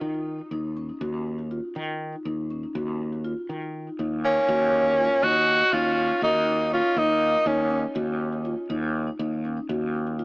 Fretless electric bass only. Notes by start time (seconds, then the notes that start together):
0.01 D#3
0.51 D#2
1.01 D#2
1.76 D#3
2.25 D#2
2.75 D#2
3.49 D#3
3.99 D#2
4.49 D#2
5.23 D#2
5.73 D#2
6.22 D#2
6.97 D#2
7.46 D#2
7.96 D#2
8.70 D#2
9.19 D#2
9.69 D#2